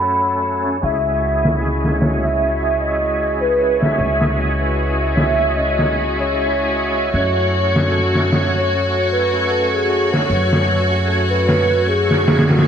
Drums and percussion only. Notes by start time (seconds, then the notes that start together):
0.03 closed hi-hat
0.43 closed hi-hat
0.82 closed hi-hat
1.21 closed hi-hat
1.45 snare
1.61 closed hi-hat
1.85 snare
2.00 snare, closed hi-hat
2.39 closed hi-hat
2.79 closed hi-hat
3.18 closed hi-hat
3.58 closed hi-hat
3.82 snare
3.98 closed hi-hat
4.21 snare
4.37 closed hi-hat
4.76 closed hi-hat
5.16 snare, closed hi-hat
5.55 closed hi-hat
5.79 snare
5.94 closed hi-hat
6.17 closed hi-hat
6.34 closed hi-hat
6.73 closed hi-hat
7.13 closed hi-hat
7.52 closed hi-hat
7.76 snare
7.91 closed hi-hat
8.15 snare
8.31 snare, closed hi-hat
8.71 closed hi-hat
9.10 closed hi-hat
9.50 closed hi-hat
9.89 closed hi-hat
10.14 snare
10.29 closed hi-hat
10.53 snare
10.68 closed hi-hat
11.08 closed hi-hat
11.47 snare, closed hi-hat
11.86 closed hi-hat
12.11 snare
12.26 snare, closed hi-hat
12.37 snare, closed hi-hat
12.49 snare, closed hi-hat
12.57 snare, closed hi-hat